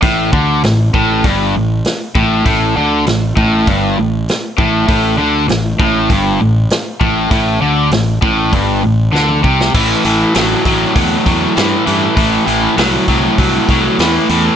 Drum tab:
CC |----------------|----------------|----------------|----------------|
HH |o---o---o---o---|o---o---o---o---|o---o---o---o---|o---o---o-------|
SD |----o-------o---|----o-------o---|----o-------o---|----o-------o--o|
T2 |----------------|----------------|----------------|-------------o--|
BD |o-o---o-o-----o-|o-----o-o-----o-|o-----o-o-----o-|o-----o-o-----o-|

CC |x---------------|----------------|
HH |--o-o-o-o-o-o-o-|o-o-o-o-o-o-o-o-|
SD |----o-------o---|----o-------o---|
T2 |----------------|----------------|
BD |o-----o-o-o-----|o-----o-o-o-----|